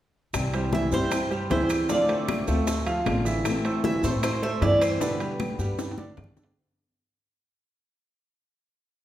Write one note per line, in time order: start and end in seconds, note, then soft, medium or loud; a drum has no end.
0.33 0.88 C2 medium
0.33 0.91 C3 medium
0.33 0.92 E3 medium
0.33 0.92 G3 medium
0.33 0.92 C4 medium
0.33 0.91 E4 medium
0.33 high bongo medium
0.33 high conga soft
0.33 high timbale medium
0.33 claves medium
0.33 maracas medium
0.53 0.70 G3 medium
0.53 0.70 G4 medium
0.53 0.70 C5 medium
0.53 high bongo soft
0.53 high conga soft
0.53 high timbale medium
0.53 maracas soft
0.72 0.89 E3 medium
0.72 0.89 E4 medium
0.72 0.89 E5 medium
0.72 0.92 E5 medium
0.72 high bongo medium
0.72 high conga medium
0.72 low timbale soft
0.72 maracas soft
0.91 1.46 G2 medium
0.91 1.10 E3 medium
0.91 1.24 G3 medium
0.91 1.11 G3 medium
0.91 1.11 C4 medium
0.91 1.11 E4 medium
0.91 1.24 G4 medium
0.91 1.25 C5 medium
0.91 1.47 C5 medium
0.91 high bongo soft
0.91 high conga soft
0.91 maracas medium
1.11 muted nylon-string guitar stroke medium
1.11 high bongo medium
1.11 high conga soft
1.11 high timbale medium
1.11 claves medium
1.11 maracas medium
1.31 1.47 G3 medium
1.31 1.47 G4 medium
1.31 1.47 C5 medium
1.31 high bongo soft
1.31 high conga soft
1.31 maracas soft
1.50 1.85 D2 medium
1.50 1.88 E3 soft
1.50 1.82 E3 medium
1.50 1.89 G3 soft
1.50 1.89 C4 soft
1.50 1.82 E4 medium
1.50 1.89 E4 medium
1.50 1.89 C5 medium
1.50 1.83 E5 medium
1.50 high bongo soft
1.50 low bongo medium
1.50 high conga soft
1.50 high timbale medium
1.50 low timbale medium
1.50 maracas soft
1.70 high timbale medium
1.70 claves medium
1.70 maracas medium
1.89 2.47 D3 medium
1.89 2.05 F3 medium
1.89 2.49 A3 medium
1.89 2.49 C4 medium
1.89 2.05 F4 medium
1.89 2.47 F4 medium
1.89 2.44 D5 medium
1.89 2.05 F5 medium
1.89 high bongo medium
1.89 high conga soft
1.89 maracas medium
2.08 2.40 A3 medium
2.08 2.41 A4 medium
2.08 2.41 C5 medium
2.08 high bongo soft
2.08 high conga soft
2.08 high timbale medium
2.08 maracas soft
2.28 high bongo medium
2.28 high conga medium
2.28 high timbale medium
2.28 low timbale soft
2.28 claves medium
2.28 maracas soft
2.48 3.02 D2 medium
2.48 2.80 A3 medium
2.48 2.66 A3 soft
2.48 2.67 C4 medium
2.48 2.67 F4 medium
2.48 2.80 A4 medium
2.48 2.80 C5 medium
2.48 high bongo soft
2.48 high conga soft
2.48 maracas medium
2.67 muted nylon-string guitar stroke medium
2.67 high bongo medium
2.67 high conga soft
2.67 high timbale medium
2.67 maracas medium
2.86 3.18 F3 medium
2.86 3.19 F4 medium
2.86 3.19 F5 medium
2.86 high bongo soft
2.86 high conga soft
2.86 high timbale medium
2.86 maracas soft
3.05 3.41 A1 medium
3.05 3.44 D3 soft
3.05 3.44 A3 soft
3.05 3.44 C4 medium
3.05 3.45 F4 medium
3.05 high bongo soft
3.05 low bongo medium
3.05 high conga medium
3.05 high timbale medium
3.05 low timbale medium
3.05 claves medium
3.05 maracas soft
3.25 3.57 E3 medium
3.25 3.58 E5 medium
3.25 high conga soft
3.25 maracas medium
3.44 4.02 E3 medium
3.44 4.03 A3 medium
3.44 4.03 C4 medium
3.44 4.02 E4 medium
3.44 high bongo medium
3.44 high conga soft
3.44 high timbale medium
3.44 claves medium
3.44 maracas medium
3.64 3.81 A3 medium
3.64 3.81 A4 medium
3.64 3.81 C5 medium
3.64 high bongo soft
3.64 high conga soft
3.64 high timbale medium
3.64 maracas soft
3.84 4.00 E3 medium
3.84 4.00 E4 medium
3.84 4.00 E5 medium
3.84 4.03 E5 medium
3.84 high bongo medium
3.84 high conga medium
3.84 low timbale medium
3.84 maracas soft
4.03 4.58 A2 medium
4.03 4.36 A3 medium
4.03 4.22 A3 medium
4.03 4.22 C4 medium
4.03 4.22 E4 medium
4.03 4.36 A4 medium
4.03 4.36 C5 medium
4.03 4.10 C5 medium
4.03 high bongo soft
4.03 high conga soft
4.03 maracas medium
4.23 4.42 C5 medium
4.23 muted nylon-string guitar stroke medium
4.23 high bongo medium
4.23 high conga soft
4.23 high timbale medium
4.23 claves medium
4.23 maracas medium
4.42 4.58 A3 medium
4.42 4.58 A4 medium
4.42 4.59 C5 medium
4.42 4.62 E5 medium
4.42 high bongo soft
4.42 high conga soft
4.42 maracas soft
4.61 4.96 G2 medium
4.61 5.00 E3 soft
4.61 4.94 E3 medium
4.61 5.00 A3 medium
4.61 5.00 C4 soft
4.61 4.94 E4 medium
4.61 5.01 E4 soft
4.61 4.82 D5 medium
4.61 4.94 E5 medium
4.61 high bongo soft
4.61 low bongo medium
4.61 high conga soft
4.61 high timbale medium
4.61 low timbale medium
4.61 maracas soft
4.82 5.01 C5 medium
4.82 high timbale medium
4.82 claves medium
4.82 maracas medium
5.00 5.58 B2 medium
5.00 5.58 D3 medium
5.00 5.17 D3 medium
5.00 5.59 G3 medium
5.00 5.58 B3 medium
5.00 5.17 D4 medium
5.00 5.58 G4 medium
5.00 6.14 B4 medium
5.00 5.17 D5 medium
5.00 high bongo medium
5.00 high conga soft
5.00 maracas medium
5.20 5.52 G3 medium
5.20 5.52 G4 medium
5.20 5.52 B4 medium
5.20 high bongo soft
5.20 high conga soft
5.20 high timbale medium
5.20 maracas soft
5.40 high bongo medium
5.40 high conga medium
5.40 high timbale medium
5.40 low timbale medium
5.40 claves medium
5.40 maracas soft
5.58 6.13 G2 medium
5.58 5.78 D3 soft
5.58 5.91 G3 medium
5.58 5.78 G3 medium
5.58 5.78 B3 medium
5.58 5.78 G4 medium
5.58 5.91 G4 medium
5.58 5.92 B4 medium
5.58 high conga soft
5.58 maracas medium
5.79 muted nylon-string guitar stroke soft
5.79 low bongo medium
5.79 high conga soft
5.79 high timbale medium
5.79 maracas medium
5.91 high timbale medium
5.98 6.30 D3 medium
5.98 6.30 D4 medium
5.98 6.30 D5 medium
5.98 high conga medium
5.98 maracas soft
6.17 6.52 G2 medium
6.17 6.55 D3 soft
6.17 6.55 G3 soft
6.17 6.56 B3 medium
6.17 6.56 G4 medium
6.17 low bongo medium
6.17 low timbale medium
6.17 claves medium
6.17 maracas soft
6.24 low conga loud
6.37 6.53 D3 medium
6.37 6.53 D4 medium
6.37 6.53 D5 medium
6.37 low bongo medium
6.37 low conga medium
6.37 maracas medium
6.43 low timbale medium